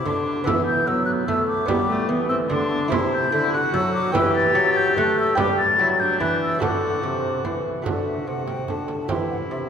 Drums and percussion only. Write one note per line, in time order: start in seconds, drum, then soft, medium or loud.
0.06 frame drum medium
0.47 frame drum loud
1.29 frame drum medium
1.68 frame drum loud
2.51 frame drum medium
2.92 frame drum loud
3.74 frame drum medium
4.15 frame drum loud
4.97 frame drum medium
5.38 frame drum medium
6.21 frame drum medium
6.62 frame drum medium
7.45 frame drum medium
7.86 frame drum medium
8.48 frame drum medium
8.68 frame drum soft
8.88 frame drum soft
9.09 frame drum medium